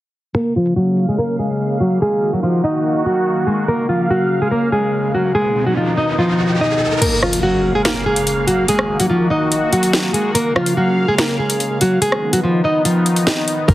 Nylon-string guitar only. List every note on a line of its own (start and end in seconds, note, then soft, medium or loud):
0.35 0.53 A#3 medium
0.35 0.52 A#4 medium
0.56 0.74 F3 medium
0.56 0.73 F4 medium
0.76 1.06 F#3 medium
0.76 1.06 F#4 medium
1.09 1.18 G#3 medium
1.09 1.17 G#4 medium
1.19 1.36 A#3 medium
1.19 1.36 A#4 medium
1.39 1.79 G#3 medium
1.39 1.78 G#4 medium
1.80 1.98 F#3 medium
1.80 1.98 F#4 medium
2.02 2.32 G#3 medium
2.02 2.31 G#4 loud
2.33 2.42 F#3 medium
2.33 2.42 F#4 medium
2.43 2.61 F3 medium
2.43 2.61 F4 medium
2.64 3.03 D#4 medium
2.64 3.04 D#5 medium
3.06 3.46 F#3 medium
3.06 3.45 F#4 medium
3.47 3.65 G#3 medium
3.47 3.64 G#4 medium
3.68 3.86 A#3 medium
3.68 3.86 A#4 medium
3.89 4.07 F3 medium
3.89 4.06 F4 medium
4.10 4.40 F#3 medium
4.10 4.40 F#4 medium
4.42 4.51 G#3 medium
4.42 4.50 G#4 medium
4.51 4.69 A#3 medium
4.51 4.69 A#4 medium
4.72 5.12 G#3 medium
4.72 5.12 G#4 medium
5.15 5.32 F#3 medium
5.15 5.32 F#4 medium
5.35 5.65 G#3 medium
5.35 5.64 G#4 loud
5.66 5.76 F#3 medium
5.66 5.75 F#4 medium
5.77 5.95 F3 medium
5.77 5.94 F4 medium
5.97 6.15 D#4 medium
5.97 6.15 D#5 medium
6.19 6.58 F3 medium
6.19 6.58 F4 medium
6.60 6.99 D#4 medium
6.60 7.00 D#5 medium
7.01 7.19 A#3 medium
7.01 7.19 A#4 medium
7.23 7.41 F3 medium
7.23 7.40 F4 medium
7.43 7.73 F#3 medium
7.43 7.73 F#4 medium
7.75 7.84 G#3 medium
7.75 7.84 G#4 medium
7.85 8.03 A#3 medium
7.85 8.03 A#4 medium
8.06 8.46 G#3 medium
8.06 8.45 G#4 medium
8.47 8.65 F#3 medium
8.47 8.65 F#4 medium
8.69 8.98 G#3 medium
8.69 8.98 G#4 loud
9.00 9.09 F#3 medium
9.00 9.09 F#4 medium
9.10 9.28 F3 medium
9.10 9.27 F4 medium
9.30 9.70 D#4 medium
9.30 9.70 D#5 medium
9.73 10.12 F#3 medium
9.73 10.12 F#4 medium
10.13 10.32 G#3 medium
10.13 10.31 G#4 medium
10.35 10.53 A#3 medium
10.35 10.52 A#4 medium
10.56 10.74 F3 medium
10.56 10.73 F4 medium
10.77 11.07 F#3 medium
10.77 11.06 F#4 medium
11.08 11.17 G#3 medium
11.08 11.17 G#4 medium
11.18 11.36 A#3 medium
11.18 11.36 A#4 medium
11.39 11.79 G#3 medium
11.39 11.79 G#4 medium
11.81 11.99 F#3 medium
11.81 11.99 F#4 medium
12.02 12.32 G#3 medium
12.02 12.31 G#4 loud
12.33 12.42 F#3 medium
12.33 12.42 F#4 medium
12.43 12.61 F3 medium
12.43 12.61 F4 medium
12.64 12.81 D#4 medium
12.64 12.82 D#5 medium
12.85 13.25 F3 medium
12.85 13.24 F4 medium
13.27 13.66 D#4 medium
13.27 13.67 D#5 medium
13.68 13.74 A#3 medium
13.68 13.74 A#4 medium